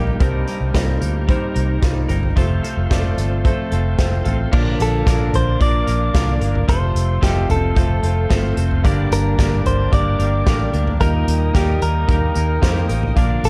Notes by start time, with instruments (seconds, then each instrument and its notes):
Already playing: fingered electric bass A#1, grand piano A#2 G3 A#3 D#4 A4 A#4, tonewheel organ A#3 D#4 G4 G5, clean electric guitar A#3 D#4 G4
0.07 floor tom
0.20 fingered electric bass C2, grand piano G2 G3 C4 D#4 A#4, clean electric guitar C3 G3 A#3 D#4 A#4, tonewheel organ G4 C5 A#5, kick, closed hi-hat
0.47 clean electric guitar C3 G3 A#3 D#4 A#4, closed hi-hat
0.61 fingered electric bass C2
0.74 fingered electric bass C2, clean electric guitar C3 G3 A#3 D#4 A#4, grand piano G3 C4 D#4 F4, kick, snare, closed hi-hat
1.01 fingered electric bass D2, clean electric guitar A#3 D#4 A#4, closed hi-hat
1.27 clean electric guitar G3 A#3 D#4 A#4, grand piano G3 C4 D#4 C5, kick, closed hi-hat
1.54 fingered electric bass C2, clean electric guitar A#3 D#4 A#4, closed hi-hat
1.82 fingered electric bass C2, grand piano G3 C4 D#4 F4, kick, snare, closed hi-hat
2.09 fingered electric bass G1, clean electric guitar A#3 D#4 A#4, closed hi-hat, floor tom
2.23 floor tom
2.36 fingered electric bass F1, grand piano C3 A3 C4 F4 C5, clean electric guitar F3 C4 F4 A4, tonewheel organ A4 F5 C6, kick, closed hi-hat
2.63 clean electric guitar F3 C4 F4 A4, closed hi-hat
2.77 fingered electric bass F1
2.90 fingered electric bass F1, clean electric guitar F3 C4 F4 A4, grand piano A3 C4 F4 D5, kick, snare, closed hi-hat
3.18 fingered electric bass G1, clean electric guitar C4 F4 A4, closed hi-hat
3.44 clean electric guitar F3 C4 F4 A4, grand piano A3 C4 F4 C5, kick, closed hi-hat
3.71 fingered electric bass F1, clean electric guitar C4 F4 A4, grand piano A5, closed hi-hat
3.98 fingered electric bass F1, grand piano A3 C4 F4 C5 G5, kick, snare, closed hi-hat
4.25 fingered electric bass A1, clean electric guitar C4 F4 A4, grand piano F5, closed hi-hat, floor tom
4.52 fingered electric bass A#1, clean electric guitar A#2 D3 F3 A#3 D4 A#4, grand piano A#2 F3 A#3 D4 F4 D5, tonewheel organ A#3 D5 F5 D6, kick, crash
4.80 fingered electric bass A#1, clean electric guitar A4, closed hi-hat
5.06 fingered electric bass A#1, clean electric guitar A#2 D3 F3 A#3 D4 A#4, grand piano A#3 D4 F4 D5, kick, snare, closed hi-hat
5.33 fingered electric bass A#1, clean electric guitar C5, closed hi-hat, floor tom
5.60 fingered electric bass A#1, clean electric guitar F3 A#3 D4 A#4 D5, grand piano A#3 D4 F4 D5, kick, closed hi-hat
5.87 fingered electric bass A#1, clean electric guitar F3 A#3 D4 A#4, closed hi-hat
6.14 fingered electric bass C2, clean electric guitar A#2 D3 F3 A#3 D4 A#4, grand piano A#3 D4 F4 D5, kick, snare, closed hi-hat
6.41 fingered electric bass G1, clean electric guitar F3 A#3 D4 A#4, closed hi-hat
6.55 floor tom
6.68 fingered electric bass F1, grand piano C3 A3 C4 F4 C5, clean electric guitar F3 C4 F4 A4 C5, tonewheel organ A4 C5 C6, kick, closed hi-hat
6.95 fingered electric bass F1, closed hi-hat
7.21 fingered electric bass F1, clean electric guitar F3 C4 F4 G4 A4, grand piano A3 C4 F4 D#5, kick, snare, closed hi-hat
7.49 fingered electric bass F1, clean electric guitar A4, closed hi-hat, floor tom
7.75 fingered electric bass F1, clean electric guitar F3 C4 F4 A4, grand piano A3 C4 F4 A4, kick, closed hi-hat
8.03 fingered electric bass F1, clean electric guitar C4 F4 A4, closed hi-hat
8.30 fingered electric bass G1, clean electric guitar F3 C4 F4 A4, grand piano A3 C4 F4 C5, kick, snare, closed hi-hat
8.56 fingered electric bass F1, clean electric guitar C4 F4 A4, closed hi-hat
8.71 floor tom
8.83 fingered electric bass G1, clean electric guitar G2 D3 G3 A#3 D4 A#4, grand piano G2 D3 A#3 D4 G4 D5, tonewheel organ A#4 D5 G5 D6, kick, closed hi-hat
9.11 fingered electric bass G1, clean electric guitar A#4, closed hi-hat
9.38 fingered electric bass G1, clean electric guitar G2 D3 G3 A#3 D4 A#4, grand piano A#3 D4 G4 D5, kick, snare, closed hi-hat
9.65 fingered electric bass G1, clean electric guitar C5, closed hi-hat, floor tom
9.91 fingered electric bass G1, clean electric guitar G3 A#3 D4 D5, grand piano A#3 D4 G4 D5, kick, closed hi-hat
9.95 clean electric guitar A#4
10.19 fingered electric bass G1, clean electric guitar G3 A#3 D4 A#4, closed hi-hat
10.46 fingered electric bass A1, clean electric guitar G2 D3 G3 A#3 D4 A#4, grand piano A#3 D4 G4 D5, kick, snare, closed hi-hat
10.73 fingered electric bass D2, clean electric guitar G3 A#3 D4 A#4, closed hi-hat
10.87 floor tom
10.99 fingered electric bass D#2, grand piano A#2 A#3 D#4 G4 D#5, clean electric guitar D#3 G3 A#3 D#4 A#4, tonewheel organ A#3 D#5 G5 D#6, kick, closed hi-hat
11.28 fingered electric bass D#2, closed hi-hat
11.54 fingered electric bass D#2, clean electric guitar D#3 G3 A#3 D#4 G4 A#4, grand piano A#3 D#4 G4 D5, kick, snare, closed hi-hat
11.62 grand piano D#5
11.82 fingered electric bass D#2, clean electric guitar A#4, closed hi-hat
12.07 fingered electric bass D#2, clean electric guitar G3 A#3 D#4 A#4, grand piano A#3 D#4 G4 A#4, kick, closed hi-hat
12.35 fingered electric bass D#2, clean electric guitar A#3 D#4 A#4, closed hi-hat
12.62 fingered electric bass F2, clean electric guitar D#3 G3 A#3 D#4 A#4, grand piano A#3 D#4 G4 C5, kick, snare, closed hi-hat
12.89 fingered electric bass A1, clean electric guitar A#3 D#4 A#4, closed hi-hat
13.03 floor tom
13.16 fingered electric bass A#1, clean electric guitar A#2 D3 F3 A#3 D4 A#4, grand piano A#3 D4 F4 D5, tonewheel organ D5 F5 D6, kick, closed hi-hat
13.43 fingered electric bass A#1, clean electric guitar A4, closed hi-hat